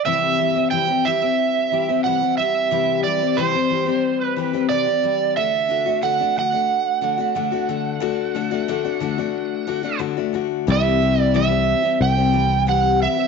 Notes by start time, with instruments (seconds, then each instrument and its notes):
0.05 steel-string acoustic guitar C3 E3 G3 C4 G4, electric slide guitar E5
0.38 steel-string acoustic guitar E3 G3 C4 G4
0.55 steel-string acoustic guitar G3 C4 G4
0.71 steel-string acoustic guitar C3 E3 G3 C4 G4, electric slide guitar G5
0.88 steel-string acoustic guitar G3 C4 G4
1.05 steel-string acoustic guitar E3 G3 C4 G4, electric slide guitar E5
1.22 steel-string acoustic guitar G3 C4 G4
1.72 steel-string acoustic guitar E3 G3 C4 G4
1.89 steel-string acoustic guitar G3 C4 G4
2.04 steel-string acoustic guitar C3 E3 G3 C4 G4, electric slide guitar F#5
2.21 steel-string acoustic guitar G3 C4 G4
2.38 steel-string acoustic guitar E3 G3 C4 G4, electric slide guitar E5
2.71 steel-string acoustic guitar C3 E3 G3 C4 G4
3.03 steel-string acoustic guitar E3 G3 C4 G4, electric slide guitar D5
3.21 steel-string acoustic guitar G3 C4 G4
3.37 steel-string acoustic guitar C3 E3 G3 C4 G4, electric slide guitar C5
3.53 steel-string acoustic guitar G3 C4 G4
3.70 steel-string acoustic guitar E3 G3 C4 G4
3.86 steel-string acoustic guitar G3 C4 G4
4.21 electric slide guitar B4
4.37 steel-string acoustic guitar E3 G3 C4 G4
4.53 steel-string acoustic guitar G3 C4 G4
4.69 steel-string acoustic guitar C3 E3 G3 C4 G4, electric slide guitar D5
4.86 steel-string acoustic guitar G3 C4 G4
5.03 steel-string acoustic guitar E3 G3 C4 G4
5.37 steel-string acoustic guitar D3 A3 D4 F#4, electric slide guitar E5
5.69 steel-string acoustic guitar D3 A3 D4 F#4
5.86 steel-string acoustic guitar A3 D4 F#4
6.02 steel-string acoustic guitar D3 A3 D4 F#4, electric slide guitar F#5
6.20 steel-string acoustic guitar A3 D4 F#4
6.37 steel-string acoustic guitar D3 A3 D4 F#4, electric slide guitar F#5
6.52 steel-string acoustic guitar A3 D4 F#4
7.01 steel-string acoustic guitar D3 A3 D4 F#4
7.18 steel-string acoustic guitar A3 D4 F#4
7.35 steel-string acoustic guitar D3 A3 D4 F#4
7.52 steel-string acoustic guitar A3 D4 F#4
7.69 steel-string acoustic guitar D3 A3 D4 F#4
8.00 steel-string acoustic guitar D3 A3 D4 F#4
8.35 steel-string acoustic guitar D3 A3 D4 F#4
8.51 steel-string acoustic guitar A3 D4 F#4
8.68 steel-string acoustic guitar D3 A3 D4 F#4
8.85 steel-string acoustic guitar A3 D4 F#4
9.00 steel-string acoustic guitar D3 A3 D4 F#4
9.18 steel-string acoustic guitar A3 D4 F#4
9.67 steel-string acoustic guitar D3 A3 D4 F#4
9.83 steel-string acoustic guitar A3 D4 F#4
9.99 steel-string acoustic guitar D3 A3 D4 F#4
10.17 steel-string acoustic guitar A3 D4 F#4
10.33 steel-string acoustic guitar D3 A3 D4 F#4
10.67 fingered electric bass C2, steel-string acoustic guitar C3 E3 G3 C4 G4
10.72 electric slide guitar E5
11.01 steel-string acoustic guitar E3 G3 C4 G4
11.22 electric slide guitar D5
11.34 steel-string acoustic guitar C3 E3 G3 C4 G4, electric slide guitar E5
11.49 steel-string acoustic guitar G3 C4 G4
11.83 steel-string acoustic guitar G3 C4 G4
12.01 fingered electric bass C2, electric slide guitar G5
12.17 steel-string acoustic guitar G3 C4 G4
12.33 steel-string acoustic guitar E3 G3 C4 G4
12.67 steel-string acoustic guitar C3 E3 G3 C4 G4, electric slide guitar F#5
13.00 steel-string acoustic guitar E3 G3 C4 G4, electric slide guitar E5
13.17 steel-string acoustic guitar G3 C4 G4